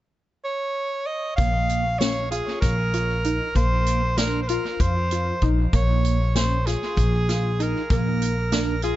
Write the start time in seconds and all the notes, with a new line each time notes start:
0.44 C#5
1.07 D#5
1.37 A#1 A#3 F5, kick, closed hi-hat
1.69 closed hi-hat
1.99 C#4 C#5, snare, closed hi-hat
2.31 F4 G#4, closed hi-hat
2.61 A#1 A#4, kick, snare, closed hi-hat
2.94 F4, closed hi-hat
3.24 D#4, closed hi-hat
3.55 A#1 A#3 C5, kick, closed hi-hat
3.86 closed hi-hat
4.18 D4 A#4, snare, closed hi-hat
4.42 C5
4.48 F4 A#4, closed hi-hat
4.80 F2 C5, kick, closed hi-hat
5.11 F4, closed hi-hat
5.42 A#1 D#4, kick, closed hi-hat
5.73 A#1 A#3 C#5, kick, closed hi-hat
6.05 closed hi-hat
6.35 C#4 C5, snare, closed hi-hat
6.66 F4 G#4, snare, closed hi-hat
6.97 A#1, kick, closed hi-hat
7.29 F4, snare, closed hi-hat
7.60 D#4 A#4, closed hi-hat
7.90 A#1 A#3 A#4, kick, closed hi-hat
8.22 closed hi-hat
8.52 D4, snare, closed hi-hat
8.82 F4 G#4, closed hi-hat